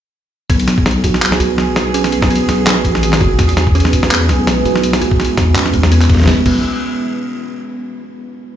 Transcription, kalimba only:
0, 0, Header, 1, 2, 480
1, 0, Start_track
1, 0, Tempo, 361446
1, 657, Time_signature, 4, 2, 24, 8
1, 11373, End_track
2, 0, Start_track
2, 0, Title_t, "Kalimba"
2, 0, Program_c, 0, 108
2, 661, Note_on_c, 0, 59, 105
2, 889, Note_off_c, 0, 59, 0
2, 1383, Note_on_c, 0, 66, 73
2, 1839, Note_off_c, 0, 66, 0
2, 1859, Note_on_c, 0, 66, 96
2, 2088, Note_off_c, 0, 66, 0
2, 2577, Note_on_c, 0, 61, 105
2, 3036, Note_off_c, 0, 61, 0
2, 3059, Note_on_c, 0, 59, 108
2, 3288, Note_off_c, 0, 59, 0
2, 3778, Note_on_c, 0, 66, 72
2, 4236, Note_off_c, 0, 66, 0
2, 4260, Note_on_c, 0, 66, 102
2, 4488, Note_off_c, 0, 66, 0
2, 4979, Note_on_c, 0, 61, 107
2, 5437, Note_off_c, 0, 61, 0
2, 5458, Note_on_c, 0, 59, 103
2, 5687, Note_off_c, 0, 59, 0
2, 6180, Note_on_c, 0, 66, 77
2, 6638, Note_off_c, 0, 66, 0
2, 6657, Note_on_c, 0, 66, 101
2, 6887, Note_off_c, 0, 66, 0
2, 7377, Note_on_c, 0, 61, 104
2, 7596, Note_off_c, 0, 61, 0
2, 7619, Note_on_c, 0, 56, 78
2, 7837, Note_off_c, 0, 56, 0
2, 7859, Note_on_c, 0, 59, 105
2, 8077, Note_off_c, 0, 59, 0
2, 8335, Note_on_c, 0, 59, 98
2, 8480, Note_off_c, 0, 59, 0
2, 8576, Note_on_c, 0, 59, 93
2, 8800, Note_off_c, 0, 59, 0
2, 11373, End_track
0, 0, End_of_file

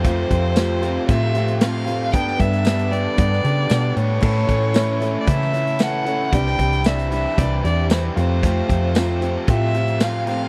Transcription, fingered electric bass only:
0, 0, Header, 1, 2, 480
1, 0, Start_track
1, 0, Tempo, 523560
1, 48, Time_signature, 4, 2, 24, 8
1, 9613, End_track
2, 0, Start_track
2, 0, Title_t, "Fingered electric bass"
2, 0, Program_c, 0, 33
2, 0, Note_on_c, 0, 41, 95
2, 215, Note_off_c, 0, 41, 0
2, 280, Note_on_c, 0, 41, 88
2, 891, Note_off_c, 0, 41, 0
2, 1001, Note_on_c, 0, 45, 101
2, 1957, Note_off_c, 0, 45, 0
2, 1957, Note_on_c, 0, 43, 105
2, 2162, Note_off_c, 0, 43, 0
2, 2194, Note_on_c, 0, 43, 102
2, 2806, Note_off_c, 0, 43, 0
2, 2915, Note_on_c, 0, 43, 90
2, 3121, Note_off_c, 0, 43, 0
2, 3157, Note_on_c, 0, 49, 93
2, 3375, Note_off_c, 0, 49, 0
2, 3396, Note_on_c, 0, 47, 92
2, 3614, Note_off_c, 0, 47, 0
2, 3633, Note_on_c, 0, 45, 85
2, 3852, Note_off_c, 0, 45, 0
2, 3876, Note_on_c, 0, 45, 100
2, 4081, Note_off_c, 0, 45, 0
2, 4115, Note_on_c, 0, 45, 88
2, 4727, Note_off_c, 0, 45, 0
2, 4835, Note_on_c, 0, 49, 108
2, 5798, Note_on_c, 0, 36, 107
2, 5812, Note_off_c, 0, 49, 0
2, 6002, Note_off_c, 0, 36, 0
2, 6039, Note_on_c, 0, 36, 107
2, 6650, Note_off_c, 0, 36, 0
2, 6765, Note_on_c, 0, 36, 97
2, 6967, Note_off_c, 0, 36, 0
2, 7006, Note_on_c, 0, 40, 107
2, 7412, Note_off_c, 0, 40, 0
2, 7486, Note_on_c, 0, 41, 104
2, 7893, Note_off_c, 0, 41, 0
2, 7970, Note_on_c, 0, 41, 95
2, 8579, Note_off_c, 0, 41, 0
2, 8692, Note_on_c, 0, 45, 106
2, 9613, Note_off_c, 0, 45, 0
2, 9613, End_track
0, 0, End_of_file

